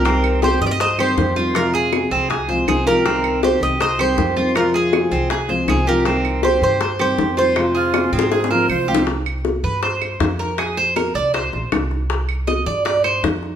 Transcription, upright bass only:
X:1
M:4/4
L:1/8
Q:1/4=159
K:Cm
V:1 name="Upright bass" clef=bass
C,,3 G,,3 F,,2- | F,,3 C,,3 C,,2- | C,,3 C,,3 F,,2- | F,,3 C,,3 C,,2- |
C,,3 G,,3 F,,2- | F,,3 A,,3 C,,2- | C,,3 G,,3 F,,2- | F,,3 C,,2 B,,, C,,2- |
C,,3 G,,3 F,,2 |]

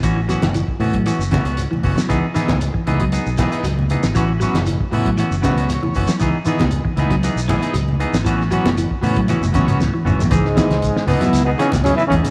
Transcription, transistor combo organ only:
X:1
M:4/4
L:1/16
Q:1/4=117
K:C#m
V:1 name="Transistor combo organ"
z16 | [E,B,D] z [E,B,D] z3 [E,B,D] z3 [E,B,D]2 z4 | [F,B,C] z [F,B,C] z3 [F,B,E] z3 [F,B,C]2 c4 | [E,B,D] z [E,B,D] z3 [E,B,D] z3 [E,B,D]2 z4 |
[F,B,C] z [F,B,C] z3 [F,B,C] z3 [F,B,C]2 z4 | z2 [E,B,D]2 z3 [E,B,E]2 z3 [E,B,D] z3 |]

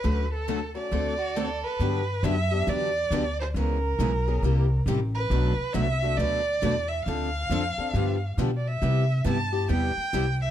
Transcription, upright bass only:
X:1
M:4/4
L:1/8
Q:"Swing" 1/4=137
K:D
V:1 name="Upright bass" clef=bass
D,,4 D,,4 | [K:G] G,,2 F,,2 E,,2 D,,2 | ^C,,2 B,,,2 =C,,2 A,,,2 | B,,, z C,,2 D,,2 E,,2 |
D,,2 =F,, z G,,2 B,,2 | C,2 G,,2 E,, z C,,2 |]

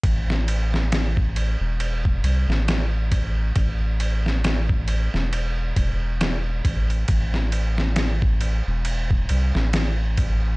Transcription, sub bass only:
X:1
M:4/4
L:1/16
Q:"Swing 16ths" 1/4=68
K:Am
V:1 name="Sub bass" clef=bass
A,,,6- A,,, E,,,3 C,, A,,,4- A,,, | A,,,6- A,,, E,,,3 E,,,4 A,,,2 | A,,,6- A,,, E,,,3 C,, A,,,4- A,,, |]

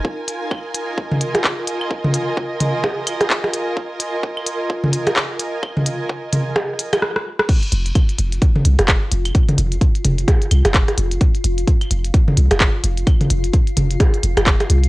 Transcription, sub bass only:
X:1
M:4/4
L:1/16
Q:"Swing 16ths" 1/4=129
K:Fm
V:1 name="Sub bass" clef=bass
z16 | z16 | z16 | z16 |
z2 F,,,2 z2 F,,,2 z2 C,, F,,,2 z F,,,2 | z2 F,,,2 z2 F,,,2 z2 C,, F,,,2 z F,,,2 | z2 F,,,2 z2 F,,,2 z2 C,, F,,,2 z F,,,2 | z2 F,,,2 z2 F,,,2 z2 F,,, F,,,2 z C,,2 |]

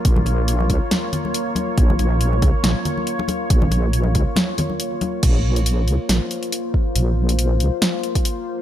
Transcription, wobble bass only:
X:1
M:4/4
L:1/8
Q:"Swing 16ths" 1/4=139
K:Bbm
V:1 name="Wobble bass" clef=bass
B,,,3 D,, z4 | B,,,3 D,, B,,, z3 | B,,,3 D,, z4 | B,,,3 D,, B,,, z3 |
B,,,3 D,, z4 |]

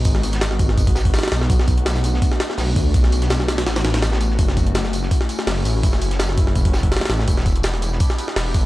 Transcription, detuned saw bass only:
X:1
M:4/4
L:1/8
Q:"Swing 16ths" 1/4=166
K:F#dor
V:1 name="Detuned saw bass" clef=bass
G,,,4 G,,,2 z B,,, | B,,,4 z2 B,,, =D,, | B,,,4 A,,, A,,,3 | F,,,4 z2 F,,, A,,, |
F,,,4 F,,,2 z A,,, | E,,,4 z2 E,,, =G,,, |]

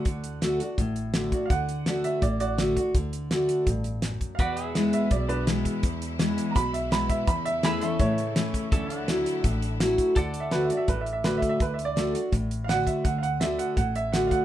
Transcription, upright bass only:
X:1
M:4/4
L:1/8
Q:1/4=166
K:D
V:1 name="Upright bass" clef=bass
D,,4 A,,,4 | D,,4 A,,,4 | D,,4 A,,,4 | E,,4 B,,,4 |
E,,4 B,,,4 | E,,4 A,,4 | D,,4 A,,,4 | D,,4 A,,,4 |
D,,4 A,,,4 | D,,4 A,,,4 |]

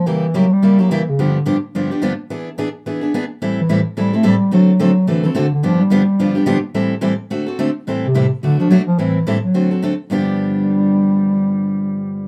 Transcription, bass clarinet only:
X:1
M:4/4
L:1/8
Q:"Swing" 1/4=215
K:Gmix
V:1 name="Bass clarinet" clef=bass
E,2 ^F, G,2 F, E, ^C, | D,2 z6 | z8 | z E,2 z G, A, G,2 |
^F,2 F,2 E, E, D, D, | F, G,6 z | z8 | z C,2 z D, F, ^F, =F, |
E,2 z ^F,4 z | G,8- | G,8 |]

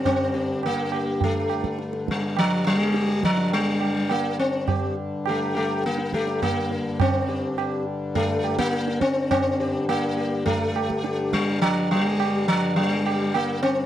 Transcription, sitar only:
X:1
M:4/4
L:1/16
Q:1/4=104
K:none
V:1 name="Sitar"
z2 G2 z2 G2 z8 | z4 G2 z8 z2 | G2 z2 G2 G2 z2 G2 z4 | z2 G2 G2 z4 G2 z4 |
z2 G2 z2 G2 z2 G2 G2 z2 | z4 G2 z4 G2 z4 |]
V:2 name="Sitar"
C4 _B,4 A,6 G,2 | F,2 G,4 F,2 G,4 _B,2 C2- | C2 z2 A,2 A,2 _B,2 A,2 B,4 | C6 z2 A,3 _B,3 C2 |
C4 _B,4 A,6 G,2 | F,2 G,4 F,2 G,4 _B,2 C2 |]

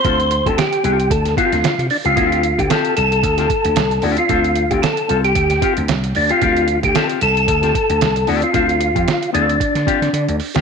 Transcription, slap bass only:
X:1
M:4/4
L:1/16
Q:"Swing 16ths" 1/4=113
K:Dm
V:1 name="Slap bass" clef=bass
D,,3 D,, z2 C,,2 D,,2 z D,, D, C, z ^C,, | D,,3 D,, z2 C,,2 D,,2 z D,, C,,2 D,, z | D,,3 D,, z2 C,,2 D,,2 z D,, C,,2 D,, z | D,,3 D,, z2 C,,2 D,,2 z D,, C,,2 D,, z |
D,,3 F,, z2 D,,2 z D, z D, D, D,, z ^C,, |]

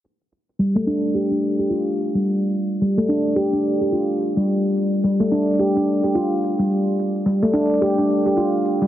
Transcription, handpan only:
X:1
M:4/4
L:1/16
Q:"Swing 16ths" 1/4=108
K:C
V:1 name="Handpan"
z4 G, A, D z G D2 G F z2 G, | z4 G, A, D z G D2 G F z2 G, | z4 G, A, D z G D2 G F z2 G, | z4 G, A, D z G D2 G F z2 G, |]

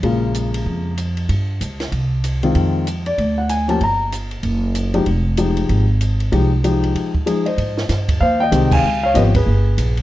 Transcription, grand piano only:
X:1
M:4/4
L:1/8
Q:"Swing" 1/4=191
K:Fm
V:1 name="Grand piano"
z8 | z8 | z3 =d2 ^f ^g =a | b2 z6 |
z8 | z6 z [ce]- | [K:Ab] [ce]3 z [cf] [eg]2 [fa]- | [fa] [df] [_ce] [Ac]4 z |]
V:2 name="Grand piano"
[D,A,B,F]4- [D,A,B,F] z3 | z6 z [E,A,CF]- | [E,A,CF]2 z4 z [F,B,^CG] | z6 z [F,A,EG] |
z2 [F,A,EG]3 z3 | [F,A,EG] z [F,A,EG]3 z [F,A,EA] z | [K:Ab] z6 [E,A,CG]2 | z2 [F,_CDG] z4 z |]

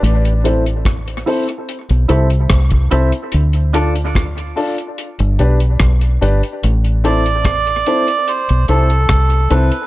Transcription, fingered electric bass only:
X:1
M:4/4
L:1/16
Q:1/4=73
K:Am
V:1 name="Fingered electric bass" clef=bass
A,,,6 z3 B,,, C,,2 C,,2 C,, z | D,,6 z3 G,,, B,,,2 B,,,2 G,,, z | A,,,6 z3 B,,, C,,2 C,,2 C,, z |]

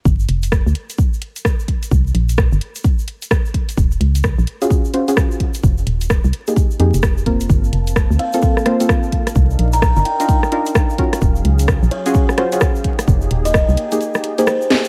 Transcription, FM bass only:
X:1
M:4/4
L:1/16
Q:"Swing 16ths" 1/4=129
K:Gphr
V:1 name="FM bass" clef=bass
G,,,2 F,,,3 D,, z8 z2 | C,,2 B,,,3 G,,, z8 z2 | E,,,2 _D,,3 B,,, z8 z2 | F,,,2 E,,,3 C,, z4 F,, F,,,4- F,,, |
G,,,2 F,,,3 D,, z8 z2 | C,,2 B,,,3 G,,, z8 z2 | E,,,2 _D,,3 B,,, z8 z2 | F,,,2 E,,,3 C,, z8 z2 |]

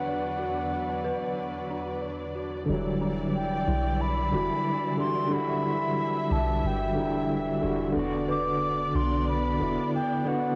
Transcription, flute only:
X:1
M:4/4
L:1/8
Q:"Swing 16ths" 1/4=91
K:Em
V:1 name="Flute"
f6 z2 | z2 g2 b3 c' | b3 a g3 z | z d'2 c' b2 g f |]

